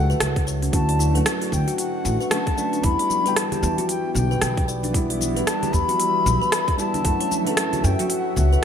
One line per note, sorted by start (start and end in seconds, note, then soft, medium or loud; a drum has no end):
0.00 0.13 C#2 loud
0.00 0.75 E3 medium
0.00 0.72 F#3 medium
0.00 0.73 F#3 medium
0.00 0.73 A3 medium
0.00 0.73 C#4 medium
0.00 0.74 F#4 loud
0.00 0.71 A4 medium
0.00 1.46 A4 medium
0.00 1.58 E5 medium
0.00 0.47 F#5 loud
0.10 0.46 B4 medium
0.10 cabasa soft
0.20 0.67 C#2 medium
0.20 cross-stick loud
0.20 open hi-hat medium
0.20 cabasa soft
0.36 kick loud
0.36 open hi-hat soft
0.47 0.56 C#5 medium
0.47 cabasa medium
0.62 0.72 C#4 medium
0.62 open hi-hat soft
0.62 cabasa soft
0.72 1.19 D2 medium
0.72 1.11 D3 medium
0.72 2.84 D3 loud
0.72 1.11 F#3 medium
0.72 1.11 A3 medium
0.72 1.12 C#4 medium
0.72 0.88 E4 medium
0.72 1.12 F#4 loud
0.72 1.22 A5 loud
0.72 kick loud
0.72 open hi-hat medium
0.72 cabasa soft
0.89 0.98 D5 medium
0.89 open hi-hat soft
0.95 1.14 E4 medium
0.95 2.84 F#4 medium
1.00 cabasa medium
1.13 2.28 D3 medium
1.13 2.28 F#3 medium
1.13 2.29 A3 medium
1.13 2.30 F#4 medium
1.13 1.40 B4 medium
1.13 open hi-hat soft
1.13 cabasa soft
1.26 2.84 A3 medium
1.26 cross-stick loud
1.26 open hi-hat medium
1.26 cabasa soft
1.41 1.52 F#4 medium
1.41 open hi-hat soft
1.41 cabasa soft
1.52 1.62 D2 loud
1.52 1.77 G5 loud
1.52 3.64 C#6 medium
1.52 kick medium
1.52 cabasa medium
1.68 1.74 F#4 loud
1.68 open hi-hat soft
1.68 cabasa soft
1.78 2.27 F#5 loud
1.78 open hi-hat medium
1.78 cabasa soft
2.05 2.15 A1 loud
2.05 cabasa medium
2.21 2.56 B4 medium
2.21 cabasa soft
2.30 2.54 D3 medium
2.30 2.54 F#3 medium
2.30 2.55 A3 medium
2.30 2.55 C#4 medium
2.30 2.55 B4 medium
2.30 2.85 A5 loud
2.30 cross-stick loud
2.30 open hi-hat medium
2.30 cabasa soft
2.47 kick loud
2.47 open hi-hat soft
2.56 2.71 D3 medium
2.56 2.71 F#3 medium
2.56 2.72 A3 medium
2.56 2.72 C#4 medium
2.56 2.72 B4 loud
2.56 2.66 D5 medium
2.56 cabasa medium
2.73 2.83 D4 medium
2.73 open hi-hat soft
2.73 cabasa soft
2.83 2.94 E2 medium
2.83 7.05 E3 medium
2.83 3.21 G3 medium
2.83 3.22 B3 medium
2.83 2.99 E4 medium
2.83 3.23 E4 loud
2.83 3.38 B5 loud
2.83 kick loud
2.83 open hi-hat medium
2.83 cabasa soft
2.99 3.09 D5 medium
2.99 open hi-hat soft
2.99 high bongo soft
3.10 3.25 E4 medium
3.10 high conga medium
3.10 cabasa medium
3.24 4.91 G3 medium
3.24 4.92 B3 medium
3.24 3.50 B4 medium
3.24 open hi-hat soft
3.24 high bongo soft
3.24 cabasa soft
3.28 4.93 G5 medium
3.34 7.90 B3 medium
3.34 3.89 A5 loud
3.34 cross-stick medium
3.34 open hi-hat medium
3.34 cabasa soft
3.52 3.62 G4 medium
3.52 open hi-hat soft
3.52 low conga medium
3.52 cabasa soft
3.63 3.73 E2 loud
3.63 high bongo medium
3.63 cabasa medium
3.78 7.05 G3 medium
3.78 3.84 F#4 loud
3.78 open hi-hat soft
3.78 high conga medium
3.78 cabasa soft
3.89 4.14 G5 loud
3.89 open hi-hat medium
3.89 cabasa soft
4.14 4.34 B1 loud
4.14 8.64 E5 medium
4.14 4.64 G5 loud
4.14 high bongo soft
4.14 low conga medium
4.14 cabasa medium
4.31 4.67 B4 medium
4.31 cabasa soft
4.41 5.41 B1 medium
4.41 cross-stick medium
4.41 open hi-hat medium
4.41 low conga medium
4.41 cabasa soft
4.57 kick loud
4.57 open hi-hat soft
4.57 high conga medium
4.68 4.77 D5 medium
4.68 cabasa medium
4.83 4.93 D4 medium
4.83 open hi-hat soft
4.83 high conga medium
4.83 cabasa soft
4.93 5.32 G3 medium
4.93 5.32 B3 medium
4.93 5.09 E4 medium
4.93 5.33 E4 loud
4.93 kick loud
4.93 open hi-hat medium
4.93 cabasa soft
5.10 5.20 D5 medium
5.10 open hi-hat soft
5.10 high bongo soft
5.21 5.36 E4 medium
5.21 high conga medium
5.21 cabasa medium
5.34 6.75 G3 medium
5.34 6.76 B3 medium
5.34 6.77 E4 medium
5.34 5.61 B4 medium
5.34 open hi-hat soft
5.34 high bongo soft
5.34 cabasa soft
5.47 5.75 A5 loud
5.47 cross-stick medium
5.47 open hi-hat medium
5.47 cabasa soft
5.62 5.73 G4 medium
5.62 open hi-hat soft
5.62 high conga medium
5.62 low conga loud
5.62 cabasa soft
5.73 5.83 E2 medium
5.73 6.78 B5 loud
5.73 kick medium
5.73 high bongo medium
5.73 cabasa medium
5.88 5.95 F#4 medium
5.88 open hi-hat soft
5.88 high conga medium
5.88 cabasa soft
6.00 open hi-hat medium
6.00 cabasa soft
6.26 6.36 B1 loud
6.26 cabasa medium
6.42 6.77 B4 medium
6.42 cabasa soft
6.52 cross-stick loud
6.52 open hi-hat medium
6.52 cabasa soft
6.68 kick loud
6.68 open hi-hat soft
6.77 6.92 G3 medium
6.77 6.93 B3 medium
6.77 6.93 E4 loud
6.77 6.87 D5 medium
6.77 7.43 A5 loud
6.77 high bongo medium
6.77 cabasa medium
6.94 7.04 D4 medium
6.94 open hi-hat soft
6.94 low conga medium
6.94 cabasa soft
7.04 7.15 F#2 loud
7.04 7.42 E3 medium
7.04 7.43 F#3 medium
7.04 8.64 F#3 loud
7.04 7.43 A3 medium
7.04 7.43 C#4 medium
7.04 7.20 E4 medium
7.04 7.43 F#4 medium
7.04 kick loud
7.04 open hi-hat medium
7.04 cabasa soft
7.20 7.30 C#5 medium
7.20 open hi-hat soft
7.20 high bongo soft
7.31 7.46 E4 medium
7.31 high conga medium
7.31 cabasa medium
7.45 8.64 E3 medium
7.45 8.64 F#3 medium
7.45 8.64 A3 medium
7.45 8.64 C#4 medium
7.45 7.72 B4 medium
7.45 7.86 A5 loud
7.45 open hi-hat soft
7.45 high bongo medium
7.45 cabasa soft
7.49 8.64 A4 medium
7.57 cross-stick loud
7.57 open hi-hat medium
7.57 cabasa soft
7.73 7.83 F#4 medium
7.73 open hi-hat soft
7.73 low conga medium
7.73 cabasa soft
7.81 7.94 F#2 loud
7.81 8.64 A4 medium
7.81 8.12 G5 loud
7.81 high bongo medium
7.81 cabasa medium
7.99 8.06 F#4 loud
7.99 open hi-hat soft
7.99 high conga medium
7.99 cabasa soft
8.10 8.36 F#5 loud
8.10 open hi-hat medium
8.10 cabasa soft
8.36 8.55 C#2 loud
8.36 8.64 F#5 medium
8.36 high bongo soft
8.36 low conga medium
8.36 cabasa medium
8.53 8.64 B4 medium
8.53 cabasa soft